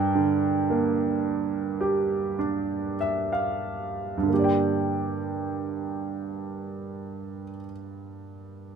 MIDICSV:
0, 0, Header, 1, 2, 480
1, 0, Start_track
1, 0, Key_signature, -2, "minor"
1, 0, Tempo, 1100917
1, 784, Tempo, 1202405
1, 1264, Tempo, 1301518
1, 1746, Time_signature, 4, 2, 24, 8
1, 3387, End_track
2, 0, Start_track
2, 0, Title_t, "Grand piano"
2, 0, Program_c, 0, 0
2, 0, Control_c, 0, 64, 127
2, 0, Note_on_c, 0, 43, 51
2, 0, Note_on_c, 0, 70, 50
2, 0, Note_on_c, 0, 74, 50
2, 0, Note_on_c, 0, 79, 81
2, 66, Note_on_c, 0, 50, 39
2, 305, Note_on_c, 0, 58, 41
2, 787, Note_on_c, 0, 67, 39
2, 1004, Note_off_c, 0, 50, 0
2, 1019, Note_on_c, 0, 62, 34
2, 1247, Note_off_c, 0, 79, 0
2, 1248, Note_off_c, 0, 70, 0
2, 1250, Note_off_c, 0, 74, 0
2, 1252, Note_off_c, 0, 58, 0
2, 1266, Note_on_c, 0, 76, 38
2, 1375, Note_off_c, 0, 76, 0
2, 1384, Note_on_c, 0, 77, 37
2, 1691, Note_off_c, 0, 43, 0
2, 1697, Note_on_c, 0, 43, 31
2, 1717, Note_on_c, 0, 50, 25
2, 1731, Note_off_c, 0, 62, 0
2, 1731, Note_off_c, 0, 77, 0
2, 1732, Note_off_c, 0, 67, 0
2, 1736, Note_on_c, 0, 58, 25
2, 1751, Control_c, 0, 64, 0
2, 1756, Note_on_c, 0, 67, 24
2, 1776, Note_on_c, 0, 74, 26
2, 1795, Note_on_c, 0, 79, 33
2, 1805, Control_c, 0, 64, 127
2, 2899, Note_off_c, 0, 43, 0
2, 2919, Note_off_c, 0, 50, 0
2, 2938, Note_off_c, 0, 58, 0
2, 2958, Note_off_c, 0, 67, 0
2, 2978, Note_off_c, 0, 74, 0
2, 2997, Note_off_c, 0, 79, 0
2, 3387, End_track
0, 0, End_of_file